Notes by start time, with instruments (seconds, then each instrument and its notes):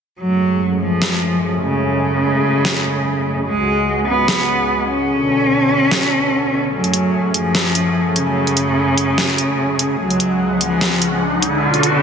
0.20 supersaw synth F#2 G#3 A3 C#4 G#4, cello F#3
0.81 cello F3
1.02 snare
1.63 cello C#3
2.65 snare
3.46 supersaw synth C#2 C#3 G#3 F#4, cello G#3
4.08 cello B3
4.28 snare
4.89 cello C#4
5.10 supersaw synth B2 D3 C#4 A4
5.91 snare
6.73 supersaw synth F#2 A3 G#4, cello F#3
6.84 closed hi-hat
6.94 closed hi-hat
7.34 cello F3, closed hi-hat
7.55 snare
7.75 closed hi-hat
8.16 cello C#3, closed hi-hat
8.47 closed hi-hat
8.57 closed hi-hat
8.98 closed hi-hat
9.18 snare
9.38 closed hi-hat
9.79 closed hi-hat
10.00 supersaw synth C#2 C#3 G#3 F#5, cello F#3, riser
10.10 closed hi-hat
10.20 closed hi-hat
10.61 cello F3, closed hi-hat
10.81 snare
11.02 closed hi-hat
11.42 cello D3, closed hi-hat
11.63 supersaw synth B2 F#3 C#4 D4 A4
11.74 closed hi-hat
11.83 closed hi-hat